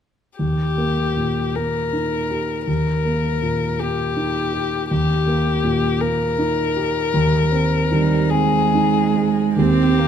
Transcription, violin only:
0.39 1.57 G4 soft
1.56 2.67 A#4 soft
2.67 3.81 A#4 soft
3.80 4.90 G4 soft
4.91 6.03 G4 soft
6.01 8.32 A#4 soft
8.30 9.37 G#4 soft
9.57 10.08 G4 soft

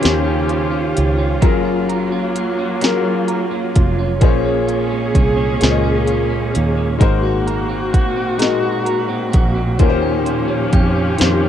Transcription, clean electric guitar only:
0.00 1.41 D#3 medium
0.00 0.71 C#4 medium
0.00 0.23 G4 medium
0.00 0.47 C5 medium
0.24 0.93 G4 medium
0.48 1.42 C5 medium
0.71 1.18 C#4 medium
0.94 1.51 G4 medium
1.18 2.12 C#4 medium
1.42 2.80 F#3 medium
1.42 1.88 A#4 medium
1.65 2.35 F4 medium
1.89 2.82 A#4 medium
2.12 2.58 C#4 medium
2.35 3.05 F4 medium
2.59 3.51 C#4 medium
2.82 4.31 F#3 medium
2.82 3.27 A#4 medium
3.05 3.74 F4 medium
3.28 4.94 A#4 medium
3.51 3.98 C#4 medium
3.75 4.21 F4 medium
3.99 4.45 C#4 medium
4.21 5.60 A#2 medium
4.21 4.66 F4 medium
4.45 5.13 C#4 medium
4.68 5.60 F4 medium
4.91 5.36 G#3 medium
5.15 5.82 C#4 medium
5.37 6.29 G#3 medium
5.61 7.10 A#2 medium
5.61 6.05 F4 medium
5.84 6.53 C#4 medium
6.07 7.09 F4 medium
6.30 6.77 G#3 medium
6.54 7.10 C#4 medium
6.77 7.00 G#3 medium
7.00 8.38 G#3 medium
7.00 7.46 A#4 medium
7.23 7.92 F#4 medium
7.47 8.39 A#4 medium
7.69 8.16 C4 medium
7.94 8.61 F#4 medium
8.16 9.08 C4 medium
8.39 9.89 G#3 medium
8.39 8.85 A#4 medium
8.62 9.31 F#4 medium
8.85 9.79 A#4 medium
9.08 9.55 C4 medium
9.32 9.88 F#4 medium
9.55 10.48 C4 medium
9.79 11.18 D#3 medium
9.79 10.24 C5 medium
10.02 10.72 G4 medium
10.25 11.19 C5 medium
10.48 10.95 C#4 medium
10.73 11.42 G4 medium
10.96 11.49 C#4 medium
11.19 11.49 D#3 medium
11.19 11.49 C5 medium
11.44 11.49 G4 medium

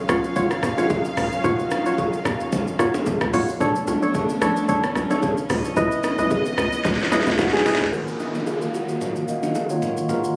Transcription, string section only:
0.00 3.56 D#3 medium
0.00 3.56 F#3 medium
0.00 3.56 C#4 medium
0.00 3.56 F5 medium
3.60 5.48 A3 medium
3.60 5.48 B3 medium
3.60 7.89 C#4 medium
3.60 5.48 D4 medium
5.50 7.91 E3 medium
5.50 7.91 B3 medium
5.50 7.91 D#5 medium

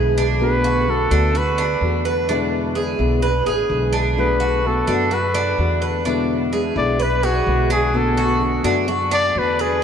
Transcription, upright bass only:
0.00 1.05 B1 medium
1.11 1.78 D2 medium
1.81 2.93 E2 medium
2.99 3.43 B1 medium
3.46 3.68 A1 medium
3.70 4.81 B1 medium
4.88 5.55 F#2 medium
5.59 6.70 E2 medium
6.76 7.43 B1 loud
7.47 8.58 B1 medium
8.64 9.31 F#2 medium
9.35 9.84 E2 medium

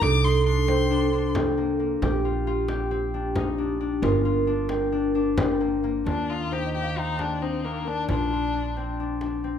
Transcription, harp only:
0.00 1.07 A3 medium
0.00 0.68 C4 medium
0.00 0.23 D#4 medium
0.00 0.50 F4 medium
0.00 1.01 G4 medium
0.23 0.52 D#4 medium
0.46 0.90 D4 medium
0.68 1.35 C4 medium
0.91 1.12 D4 medium
1.13 3.14 D4 medium
1.36 2.91 C4 medium
1.58 1.79 A#3 medium
1.79 5.01 A#3 medium
2.02 2.69 G4 medium
2.25 2.47 F4 medium
2.47 4.03 F4 medium
2.69 5.04 G4 medium
2.91 4.69 C4 loud
3.14 3.42 D4 medium
3.36 3.64 D#4 medium
3.58 3.80 D4 medium
3.81 4.47 D4 medium
4.03 4.25 F4 medium
4.25 6.06 F4 medium
4.47 4.92 D4 medium
4.69 5.37 C4 medium
4.92 5.15 D4 medium
5.15 6.35 D4 medium
5.38 6.96 C4 medium
5.61 5.83 A#3 medium
5.84 9.05 A#3 medium
6.07 8.09 F4 medium
6.29 6.52 D#4 medium
6.52 7.25 D#4 medium
6.75 9.10 G4 medium
6.97 8.76 C4 medium
7.19 7.48 D4 medium
7.42 7.71 D#4 medium
7.65 7.87 D4 medium
7.87 8.54 D4 medium
8.10 8.32 F4 medium
8.32 9.59 F4 medium
8.55 8.99 D4 medium
8.77 9.44 C4 medium
9.00 9.21 D4 medium
9.22 9.59 D4 medium
9.44 9.59 C4 medium

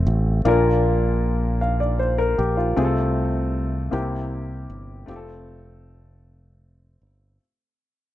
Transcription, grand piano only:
0.00 0.41 A3 medium
0.00 0.42 C4 medium
0.00 0.42 F4 medium
0.00 0.43 A4 medium
0.45 1.58 A#2 medium
0.45 2.73 A#3 medium
0.45 2.73 D4 medium
0.45 1.60 F4 medium
0.45 1.60 A#4 medium
1.61 1.80 F5 soft
1.80 1.99 D5 soft
1.99 2.18 C5 medium
2.18 2.37 A#4 medium
2.38 2.57 G4 medium
2.57 2.76 F4 medium
2.76 3.89 C3 medium
2.76 3.92 A3 medium
2.76 3.90 C4 medium
2.76 3.93 F4 medium
2.76 2.84 G#4 medium
2.85 3.97 A4 medium
3.91 5.04 C3 medium
3.91 5.08 A#3 medium
3.91 5.06 C4 medium
3.91 5.08 E4 medium
3.91 5.08 G4 medium
5.06 7.34 A3 medium
5.06 7.35 C4 medium
5.06 7.36 F4 medium
5.06 5.15 G4 medium
5.16 7.39 A4 medium

